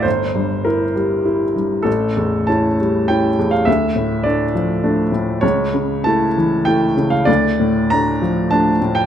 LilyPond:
<<
  \new Staff \with { instrumentName = "Upright piano" } { \time 3/4 \key d \minor \tempo 4 = 100 c''4 bes'4. r8 | a'4 a''4 g''8. f''16 | e''4 d''4. r8 | cis''4 a''4 g''8. f''16 |
d''4 bes''4 a''8. g''16 | }
  \new Staff \with { instrumentName = "Upright piano" } { \clef bass \time 3/4 \key d \minor g,,8 g,8 e'8 g8 e'8 g,8 | a,,8 e,8 <cis' e'>8 g8 <cis' e'>8 e,8 | d,8 a,8 <a d'>8 f8 <a d'>8 a,8 | cis,8 cis8 <a e'>8 e8 <a e'>8 cis8 |
d,8 a,8 <a d'>8 f8 <a d'>8 a,8 | }
>>